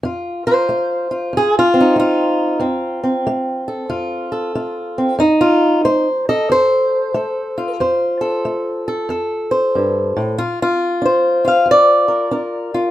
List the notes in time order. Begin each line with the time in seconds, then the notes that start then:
0.03 F2 F4
0.47 F4 C5
0.69 A3
1.11 F4
1.33 F2
1.37 G#4
1.59 F4
1.74 C4
1.81 D#4
1.96 A3 F4
2.60 F2 C4
3.04 C4
3.27 A3
3.68 A4
3.90 F2 F4
4.32 A4
4.55 A3 F4
4.98 C4
5.19 F2 D#4
5.41 F4
5.85 A3 C5
6.29 A4 D#5
6.50 F2 C5
7.14 A3 A4
7.58 F4
7.80 F2 C5
8.21 A4
8.45 A3
8.88 A4
9.09 F2 A4
9.51 C5
9.75 G2
10.17 A2
10.38 A#2 F4
10.62 F4
11.02 D4 C5
11.45 F4 F5
11.66 F2
11.71 D5
12.08 A#4
12.31 D4 A#4
12.74 F4